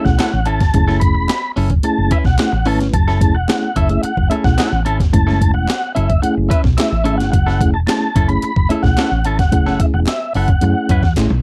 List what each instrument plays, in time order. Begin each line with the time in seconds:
Already playing: reed electric piano A3 C#4 E4 G#4
0.04 fingered electric bass B1, tonewheel organ F#5, muted clean electric guitar stroke, kick, snare
0.18 clean electric guitar C#4 E4 A4, snare, clap, closed hi-hat
0.32 fingered electric bass A1, muted clean electric guitar stroke
0.45 fingered electric bass G#1, clean electric guitar C#4 E4 A4, tonewheel organ A5, closed hi-hat
0.60 fingered electric bass G1, muted clean electric guitar stroke, kick, snare, closed hi-hat
0.73 fingered electric bass F#1, reed electric piano G#3 C#4 E4 G#4, muted clean electric guitar stroke, kick, closed hi-hat
0.80 reed electric piano A3
0.88 clean electric guitar C#4 E4 A4, snare
1.00 tonewheel organ B5, muted clean electric guitar stroke, kick, closed hi-hat
1.14 fingered electric bass E1, muted clean electric guitar stroke
1.29 muted clean electric guitar stroke, snare, clap, closed hi-hat
1.56 fingered electric bass F#1, clean electric guitar C#4 E4 A4, open hi-hat
1.70 muted clean electric guitar stroke, kick, closed hi-hat
1.83 reed electric piano A3 C#4 E4 G#4, tonewheel organ A5, muted clean electric guitar stroke, muted fingered electric bass stroke, closed hi-hat
1.98 fingered electric bass F#1
2.11 clean electric guitar C#4 E4 B4, tonewheel organ E5, kick, closed hi-hat
2.25 fingered electric bass B1, tonewheel organ F#5, muted clean electric guitar stroke, kick, snare
2.38 reed electric piano A3 C#4 E4 G#4, snare, clap, closed hi-hat
2.52 fingered electric bass A1, muted clean electric guitar stroke
2.65 fingered electric bass G#1, reed electric piano A3 C#4 E4 B4, clean electric guitar C#4 E4 A4, tonewheel organ A5, open hi-hat
2.80 fingered electric bass G1, muted clean electric guitar stroke, snare, closed hi-hat
2.94 fingered electric bass F#1, tonewheel organ A5, muted clean electric guitar stroke, kick, closed hi-hat
3.08 clean electric guitar C#4 E4 A4, snare
3.20 reed electric piano A3 C#4 E4 G#4, kick, closed hi-hat
3.34 fingered electric bass E1, tonewheel organ F#5, muted clean electric guitar stroke
3.48 reed electric piano A3 C#4 E4 G#4, muted clean electric guitar stroke, snare, clap, closed hi-hat
3.76 fingered electric bass F#1, clean electric guitar C#4 E4 A4, tonewheel organ E5, kick, closed hi-hat
3.89 reed electric piano A3 C#4 E4 G#4, muted clean electric guitar stroke, closed hi-hat
4.03 tonewheel organ F#5, muted fingered electric bass stroke, muted clean electric guitar stroke, closed hi-hat
4.17 fingered electric bass F#1, kick
4.30 reed electric piano A3 C#4 E4 G#4, clean electric guitar C#4 E4 A4, tonewheel organ E5, closed hi-hat
4.44 fingered electric bass B1, tonewheel organ F#5, muted clean electric guitar stroke, kick, snare
4.58 clean electric guitar C#4 E4 A4, snare, clap, closed hi-hat
4.72 fingered electric bass A1, muted clean electric guitar stroke
4.85 fingered electric bass G#1, clean electric guitar C#4 E4 A4, tonewheel organ A5, closed hi-hat
5.00 fingered electric bass G1, kick, snare, closed hi-hat
5.13 fingered electric bass F#1, reed electric piano G#3 A3 C#4 E4, tonewheel organ A5, muted clean electric guitar stroke, kick, closed hi-hat
5.27 clean electric guitar C#4 E4 A4, snare
5.41 muted clean electric guitar stroke, kick, closed hi-hat
5.54 fingered electric bass E1, tonewheel organ F#5, muted clean electric guitar stroke
5.68 muted clean electric guitar stroke, snare, clap, closed hi-hat
5.95 fingered electric bass F#1, clean electric guitar C#4 E4 A4, tonewheel organ E5, closed hi-hat
6.09 muted clean electric guitar stroke, kick, closed hi-hat
6.22 reed electric piano A3 C#4 E4 G#4, tonewheel organ F#5, muted clean electric guitar stroke, closed hi-hat
6.37 fingered electric bass F#1
6.49 clean electric guitar C#4 E4 B4, tonewheel organ E5, kick, closed hi-hat
6.64 fingered electric bass B1, muted clean electric guitar stroke, kick, snare
6.77 reed electric piano A3 C#4 E4 G#4, tonewheel organ E5, snare, clap, closed hi-hat
6.91 fingered electric bass A1, muted clean electric guitar stroke
7.04 fingered electric bass G#1, reed electric piano A3 C#4 E4 G#4, clean electric guitar C#4 E4 A4, closed hi-hat
7.18 fingered electric bass G1, tonewheel organ F#5, muted clean electric guitar stroke, snare, closed hi-hat
7.32 fingered electric bass F#1, tonewheel organ F#5, muted clean electric guitar stroke, kick, closed hi-hat
7.47 clean electric guitar C#4 E4 A4, snare
7.60 reed electric piano A3 C#4 E4 G#4, kick, closed hi-hat
7.74 fingered electric bass E1, tonewheel organ A5, muted clean electric guitar stroke
7.87 reed electric piano A3 C#4 E4 G#4, tonewheel organ A5, muted clean electric guitar stroke, snare, clap, closed hi-hat
8.15 fingered electric bass F#1, clean electric guitar C#4 E4 A4, kick, closed hi-hat
8.28 reed electric piano A3 C#4 E4 G#4, tonewheel organ B5, muted clean electric guitar stroke, closed hi-hat
8.42 muted clean electric guitar stroke, closed hi-hat
8.56 fingered electric bass F#1, kick
8.69 reed electric piano A3 C#4 E4 G#4, clean electric guitar C#4 E4 A4, tonewheel organ E5, closed hi-hat
8.83 fingered electric bass B1, tonewheel organ F#5, muted clean electric guitar stroke, kick, snare
8.97 clean electric guitar C#4 E4 A4, snare, clap, closed hi-hat
9.11 fingered electric bass A1, muted clean electric guitar stroke
9.25 fingered electric bass G#1, clean electric guitar C#4 E4 A4, tonewheel organ A5, closed hi-hat
9.39 fingered electric bass G1, tonewheel organ F#5, muted clean electric guitar stroke, kick, snare, closed hi-hat
9.51 fingered electric bass F#1, reed electric piano A3 C#4 E4 G#4, muted clean electric guitar stroke, kick, closed hi-hat
9.66 clean electric guitar C#4 E4 A4, snare
9.80 tonewheel organ E5, muted clean electric guitar stroke, kick, closed hi-hat
9.94 fingered electric bass E1, tonewheel organ F#5, muted clean electric guitar stroke
10.07 tonewheel organ E5, muted clean electric guitar stroke, snare, clap, closed hi-hat
10.34 fingered electric bass F#1, clean electric guitar C#4 E4 A4, tonewheel organ F#5, open hi-hat
10.48 muted clean electric guitar stroke, kick, closed hi-hat
10.61 fingered electric bass F#2, reed electric piano A3 C#4 E4 G#4, muted clean electric guitar stroke, closed hi-hat
10.89 fingered electric bass F#2, clean electric guitar C#4 E4 B4, kick, closed hi-hat
11.03 fingered electric bass E2, muted clean electric guitar stroke, kick, snare
11.16 fingered electric bass A1, reed electric piano A3 C#4 E4 G#4, snare, clap, closed hi-hat
11.30 fingered electric bass B1, muted clean electric guitar stroke, high tom